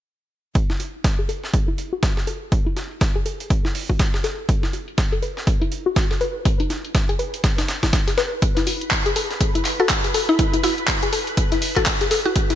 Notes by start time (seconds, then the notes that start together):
0.55 kick, closed hi-hat
0.70 E4, snare, closed hi-hat
0.80 F#4, closed hi-hat
0.94 closed hi-hat
1.04 kick, snare, closed hi-hat
1.19 G#4, closed hi-hat
1.29 A4, closed hi-hat
1.44 snare
1.54 kick, closed hi-hat
1.68 E4, closed hi-hat
1.78 closed hi-hat
1.93 F#4
2.03 kick, snare, closed hi-hat
2.17 G#4, snare, closed hi-hat
2.27 A4, closed hi-hat
2.52 kick, closed hi-hat
2.66 E4, closed hi-hat
2.76 F#4, snare, closed hi-hat
2.91 closed hi-hat
3.01 kick, snare, closed hi-hat
3.16 G#4, closed hi-hat
3.26 A4, closed hi-hat
3.40 closed hi-hat
3.50 kick, closed hi-hat
3.65 E4, snare, closed hi-hat
3.75 open hi-hat
3.89 F#4, kick, closed hi-hat
3.99 kick, snare, closed hi-hat
4.14 G#4, snare, closed hi-hat
4.24 A4, snare, closed hi-hat
4.49 kick, closed hi-hat
4.63 E4, snare, closed hi-hat
4.73 F#4, closed hi-hat
4.88 closed hi-hat
4.98 kick, snare, closed hi-hat
5.12 A4, closed hi-hat
5.22 B4, closed hi-hat
5.37 snare, closed hi-hat
5.47 kick, closed hi-hat
5.61 E4, closed hi-hat
5.72 closed hi-hat
5.86 F#4
5.96 kick, snare, closed hi-hat
6.11 A4, snare, closed hi-hat
6.21 B4, closed hi-hat
6.45 kick, closed hi-hat
6.60 D#4, closed hi-hat
6.70 E4, snare, closed hi-hat
6.85 closed hi-hat
6.95 kick, snare, closed hi-hat
7.09 G#4, closed hi-hat
7.19 B4, closed hi-hat
7.34 closed hi-hat
7.44 kick, snare, closed hi-hat
7.58 D#4, snare, closed hi-hat
7.68 snare, closed hi-hat
7.83 E4, kick, snare, closed hi-hat
7.93 kick, snare, closed hi-hat
8.08 G#4, snare, closed hi-hat
8.18 B4, snare, closed hi-hat
8.42 B4 B5, kick, closed hi-hat
8.57 E4, snare, closed hi-hat
8.67 F#4, closed hi-hat, open hi-hat
8.81 closed hi-hat
8.91 kick, snare, clap, closed hi-hat
9.06 G#4, closed hi-hat
9.16 A4, closed hi-hat, open hi-hat
9.30 snare, closed hi-hat
9.40 kick, closed hi-hat
9.55 E4, closed hi-hat
9.65 clap, closed hi-hat, open hi-hat
9.80 F#4 A4
9.89 kick, snare, clap, closed hi-hat
10.04 G#4, snare, closed hi-hat
10.14 A4, closed hi-hat, open hi-hat
10.29 E4
10.39 kick, closed hi-hat
10.54 E4, closed hi-hat
10.63 E4 F#4, snare, closed hi-hat, open hi-hat
10.78 closed hi-hat
10.88 kick, snare, clap, closed hi-hat
11.03 G#4, closed hi-hat
11.13 A4, closed hi-hat, open hi-hat
11.27 closed hi-hat
11.37 kick, closed hi-hat
11.52 E4, snare, closed hi-hat
11.62 open hi-hat
11.76 F#4 A4, kick, clap, closed hi-hat
11.86 kick, snare, clap, closed hi-hat
12.01 G#4, snare, closed hi-hat
12.11 A4, snare, closed hi-hat, open hi-hat
12.25 E4 F#4
12.36 kick, closed hi-hat
12.50 E4, snare, closed hi-hat